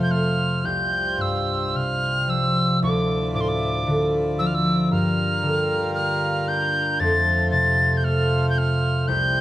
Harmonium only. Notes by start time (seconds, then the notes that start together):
Already playing: A3 F4 C5
0.64 G3
2.81 F3 E4 D5
4.91 G3 F4 A#4
7.01 A3 C5
9.10 G3 E4